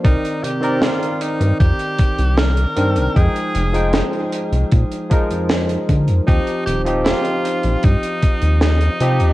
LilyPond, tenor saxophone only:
\new Staff \with { instrumentName = "Tenor saxophone" } { \time 4/4 \key c \minor \tempo 4 = 77 ees'8 g'8 f'8 ees'8 g'4 bes'4 | aes'4. r2 r8 | ees'8 g'8 f'4 ees'4 ees'4 | }